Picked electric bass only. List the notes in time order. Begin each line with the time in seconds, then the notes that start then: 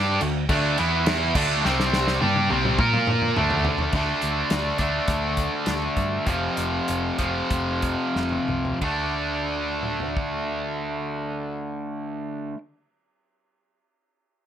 Already playing: G2
0.21 D2
0.50 D2
0.80 E2
1.35 D2
1.66 C2
2.23 G2
2.51 C2
2.79 A#2
3.37 D2
3.93 D2
4.23 D2
4.52 D2
4.79 D2
5.08 D2
5.67 D2
5.97 G2
6.27 F1
6.58 F1
6.89 F1
7.20 F1
7.51 F1
8.16 F1
8.49 C2
8.82 D2